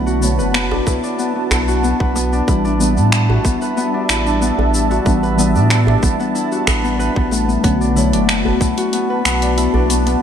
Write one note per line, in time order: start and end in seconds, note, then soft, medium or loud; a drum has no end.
0.00 0.40 B1 medium
0.00 0.18 D3 medium
0.00 0.18 F#3 medium
0.00 0.19 A3 medium
0.00 0.21 B3 medium
0.00 2.44 B3 medium
0.00 0.19 C#4 medium
0.00 0.71 D4 medium
0.00 0.86 E4 medium
0.00 2.44 F#4 medium
0.00 0.38 B4 medium
0.00 10.18 A5 medium
0.06 1.67 F#4 medium
0.06 shaker soft
0.20 2.43 D3 medium
0.20 2.44 F#3 medium
0.20 2.45 A3 medium
0.20 0.54 B3 medium
0.20 2.45 C#5 medium
0.20 shaker medium
0.39 0.81 F#1 medium
0.39 2.00 B4 medium
0.39 djembe tone soft
0.39 shaker soft
0.54 1.18 B3 medium
0.54 finger snap medium
0.54 shaker soft
0.71 1.03 D4 medium
0.71 djembe slap medium
0.71 djembe bass medium
0.87 0.99 B1 medium
0.87 1.51 E4 loud
0.87 kick loud
0.87 djembe slap medium
0.87 djembe tone medium
0.87 shaker medium
1.04 2.32 D4 medium
1.04 shaker soft
1.19 1.35 B3 medium
1.19 shaker soft
1.35 1.83 B3 medium
1.51 1.94 B1 medium
1.51 2.48 E4 medium
1.51 finger snap medium
1.51 djembe bass medium
1.51 shaker medium
1.68 3.29 F#4 medium
1.68 shaker soft
1.83 2.15 B3 medium
1.83 shaker soft
2.00 2.42 B1 medium
2.00 3.61 B4 medium
2.00 kick loud
2.15 2.80 B3 medium
2.15 djembe slap medium
2.15 shaker medium
2.33 2.64 D4 medium
2.33 shaker soft
2.47 2.99 A1 medium
2.47 2.76 E3 medium
2.47 2.76 G3 medium
2.47 7.60 G3 medium
2.47 2.77 B3 medium
2.47 7.60 D4 medium
2.47 2.77 D4 medium
2.47 3.12 E4 medium
2.47 7.60 E5 medium
2.47 kick loud
2.47 djembe tone medium
2.47 shaker soft
2.65 3.93 D4 medium
2.65 shaker soft
2.79 5.02 E3 medium
2.79 5.02 G3 medium
2.79 2.97 B3 medium
2.79 5.03 B3 medium
2.79 5.03 D4 medium
2.79 shaker medium
2.97 3.39 A2 medium
2.97 3.44 B3 medium
2.97 djembe tone soft
2.97 shaker soft
3.12 4.09 E4 medium
3.12 finger snap medium
3.12 shaker soft
3.29 4.90 F#4 medium
3.29 djembe bass medium
3.45 3.57 A1 medium
3.45 3.77 B3 medium
3.45 kick loud
3.45 djembe tone medium
3.45 shaker medium
3.62 5.23 B4 medium
3.62 shaker soft
3.77 4.41 B3 medium
3.77 shaker soft
3.94 4.26 D4 medium
4.09 4.52 A1 medium
4.09 4.73 E4 loud
4.09 finger snap medium
4.09 shaker medium
4.26 5.55 D4 medium
4.26 shaker soft
4.41 4.58 B3 medium
4.41 shaker soft
4.58 5.00 A1 medium
4.58 5.06 B3 medium
4.58 djembe bass medium
4.74 5.70 E4 medium
4.74 shaker medium
4.90 6.52 F#4 medium
4.90 djembe slap soft
4.90 shaker soft
5.05 5.57 A1 medium
5.05 5.34 E3 medium
5.05 5.34 G3 medium
5.05 5.35 B3 medium
5.05 5.38 B3 medium
5.05 5.35 D4 medium
5.05 kick loud
5.05 djembe tone medium
5.05 shaker soft
5.23 6.66 B4 medium
5.23 shaker soft
5.36 7.59 E3 medium
5.36 7.60 G3 medium
5.36 6.02 B3 loud
5.36 7.61 B3 medium
5.36 7.61 D4 medium
5.36 shaker medium
5.55 5.97 A2 medium
5.55 5.87 D4 medium
5.55 djembe tone soft
5.55 shaker soft
5.70 6.35 E4 medium
5.70 finger snap medium
5.70 shaker soft
5.87 7.80 D4 medium
5.87 djembe slap medium
5.87 djembe bass medium
6.03 6.15 A1 medium
6.03 6.19 B3 medium
6.03 kick loud
6.03 djembe slap medium
6.03 djembe tone medium
6.03 shaker medium
6.19 6.83 B3 medium
6.19 shaker soft
6.35 7.96 E4 medium
6.35 shaker soft
6.52 8.77 F#4 medium
6.52 shaker soft
6.67 7.10 A1 medium
6.67 6.99 B4 medium
6.67 finger snap medium
6.67 kick medium
6.67 djembe bass medium
6.67 shaker medium
6.84 7.15 B3 medium
6.84 shaker soft
6.99 9.04 B4 loud
6.99 shaker soft
7.16 7.58 A1 medium
7.16 7.48 B3 loud
7.16 kick medium
7.31 10.22 A3 medium
7.31 djembe slap medium
7.31 shaker medium
7.48 7.63 B3 medium
7.48 shaker soft
7.63 8.15 B1 medium
7.63 7.92 D3 medium
7.63 7.92 F#3 medium
7.63 7.93 A3 medium
7.63 10.22 B3 medium
7.63 8.28 B3 loud
7.63 7.93 C#4 medium
7.63 10.22 F#4 medium
7.63 kick loud
7.63 closed hi-hat soft
7.63 djembe tone medium
7.63 shaker soft
7.81 8.13 D4 medium
7.81 shaker soft
7.94 10.17 D3 medium
7.94 10.18 F#3 medium
7.94 10.19 A3 medium
7.94 8.61 E4 medium
7.94 shaker medium
7.98 10.19 C#5 medium
8.13 8.55 F#1 medium
8.13 9.42 D4 medium
8.13 closed hi-hat soft
8.13 djembe tone soft
8.13 shaker soft
8.28 8.45 B3 medium
8.28 finger snap medium
8.28 closed hi-hat soft
8.28 shaker soft
8.45 8.93 B3 medium
8.45 djembe bass medium
8.60 8.74 B1 medium
8.60 9.57 E4 medium
8.60 kick loud
8.60 closed hi-hat soft
8.60 djembe tone soft
8.60 shaker medium
8.78 10.22 F#4 medium
8.78 closed hi-hat soft
8.78 shaker soft
8.93 9.25 B3 medium
8.93 closed hi-hat soft
8.93 shaker soft
9.10 10.22 B4 medium
9.25 9.68 B1 medium
9.25 9.89 B3 medium
9.25 finger snap medium
9.25 shaker medium
9.42 9.74 D4 medium
9.42 closed hi-hat soft
9.42 shaker soft
9.58 10.22 E4 loud
9.58 closed hi-hat soft
9.58 shaker soft
9.74 10.16 B1 medium
9.74 10.22 D4 medium
9.74 djembe bass medium
9.89 10.06 B3 medium
9.89 closed hi-hat soft
9.89 shaker medium
10.06 10.22 B3 medium
10.06 closed hi-hat soft
10.06 djembe slap soft
10.06 shaker soft